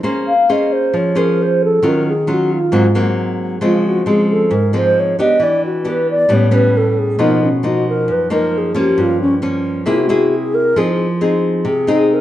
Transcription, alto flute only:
0.28 0.53 F5 medium
0.52 0.74 D#5 medium
0.73 0.98 C5 medium
0.96 1.19 C#5 medium
1.18 1.44 A#4 medium
1.42 1.62 C5 loud
1.64 1.89 A4 medium
1.88 2.07 A#4 medium
2.09 2.35 G#4 medium
2.33 2.54 F#4 medium
2.52 2.96 F4 medium
3.65 3.84 F4 medium
3.87 4.12 F#4 loud
4.10 4.30 G#4 medium
4.31 4.56 A4 medium
4.54 4.75 A#4 medium
4.76 5.01 C5 loud
4.99 5.19 C#5 loud
5.20 5.45 D#5 loud
5.43 5.64 D5 medium
5.66 5.91 F#4 medium
5.89 6.09 B4 medium
6.10 6.35 D5 loud
6.34 6.55 C#5 medium
6.54 6.79 B4 medium
6.77 7.00 A4 medium
6.99 7.24 G#4 medium
7.22 7.43 A#4 medium
7.44 7.68 C#4 medium
7.67 7.88 F#4 medium
7.89 8.13 A#4 medium
8.12 8.32 B4 loud
8.33 8.59 A#4 medium
8.58 8.80 G#4 medium
8.79 9.03 G4 medium
9.01 9.21 F4 medium
9.21 9.34 C#4 loud
9.89 10.36 F#4 medium
10.34 10.56 G#4 medium
10.54 10.80 A#4 loud
10.78 11.00 G#4 medium
11.67 12.15 G#4 medium
12.13 12.21 A#4 medium

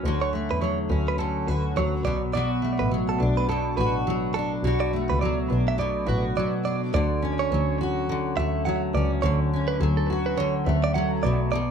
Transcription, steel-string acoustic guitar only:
0.00 0.61 F#3 medium
0.00 0.33 A3 soft
0.00 0.88 C#4 medium
0.05 1.18 D3 medium
0.05 1.48 F#4 medium
0.33 2.38 A3 soft
0.61 1.76 F#3 medium
0.89 2.12 C#4 medium
1.18 2.04 D3 medium
1.49 2.35 F#4 medium
1.76 2.91 F#3 medium
2.04 2.34 B2 medium
2.35 3.47 B2 medium
2.35 3.77 F#4 medium
2.62 4.93 A3 medium
2.91 4.07 F#3 medium
3.20 4.35 D4 medium
3.49 4.63 B2 medium
3.78 4.64 F#4 medium
4.07 5.22 F#3 medium
4.36 5.49 D4 medium
4.64 5.77 B2 medium
4.64 6.06 F#4 medium
4.93 8.37 A3 medium
5.22 6.36 F#3 medium
5.50 6.64 D4 medium
5.78 6.93 B2 medium
6.06 7.80 F#4 medium
6.37 7.51 F#3 medium
6.65 7.22 D4 medium
6.94 8.09 D3 medium
7.22 8.93 C#4 medium
7.52 8.66 F#3 medium
7.81 10.10 F#4 medium
8.09 9.23 D3 medium
8.37 10.66 A3 medium
8.66 9.80 F#3 medium
8.95 9.52 C#4 medium
9.23 10.37 D3 medium
9.53 11.31 C#4 medium
9.81 10.95 F#3 medium
10.10 11.71 F#4 medium
10.37 11.24 D3 medium
10.66 11.56 A3 medium
10.95 11.71 F#3 medium
11.24 11.52 B2 medium
11.53 11.71 B2 medium

